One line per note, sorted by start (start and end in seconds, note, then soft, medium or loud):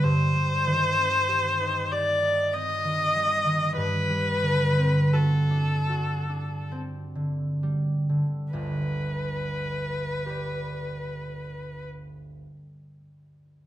0.00 3.76 G2 soft
0.00 0.34 G3 soft
0.00 1.93 C5 medium
0.00 1.58 G5 soft
0.35 3.14 G3 soft
0.66 2.83 D#3 soft
0.97 2.53 C4 soft
1.29 1.91 G4 soft
1.61 2.21 D#4 soft
1.92 3.82 G4 soft
1.92 2.55 D5 medium
2.22 3.82 D#4 soft
2.53 4.76 C4 soft
2.53 3.76 D#5 medium
2.84 3.45 D#3 soft
3.15 3.82 G3 soft
3.46 3.82 D#3 soft
3.77 7.67 G2 soft
3.77 5.15 B4 medium
4.10 7.62 G3 soft
4.43 7.14 D3 soft
4.78 6.70 C4 soft
5.13 5.88 F#4 soft
5.13 6.72 A4 medium
5.51 6.28 D4 soft
5.89 8.61 F#4 soft
6.29 10.19 D4 soft
6.72 8.61 C4 soft
7.15 8.08 D3 soft
7.63 11.53 G3 soft
8.09 8.61 D3 soft
8.53 12.43 G1 soft
8.53 12.44 D2 soft
8.53 11.84 B4 soft
10.26 13.58 G4 soft
10.26 13.59 B4 soft
10.26 13.61 D5 soft